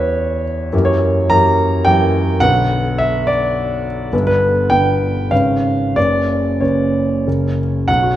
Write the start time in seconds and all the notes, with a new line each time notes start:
Already playing: E2 E3 B3 G4 B4 C#5 E5
0.73 F#2 E3 A#3 G4
0.85 C#5
1.30 F#2 E3 A#3 G4 A#5
1.85 F#2 E3 A#3 G4 G5
2.40 B1 D3 B3 B4 F#5
2.98 E5
3.27 D5
4.12 G1 D3 B3 B4
4.27 B4
4.70 G1 D3 B3 B4 G5
5.31 G#1 C#3 C#4 B4 F5
5.96 F#1 C#3 C#4 B4 D5
6.60 F#1 C#3 C#4 B4 C#5
7.27 F#1 C#3 C#4 A#4
7.88 B1 F#5
8.02 F#4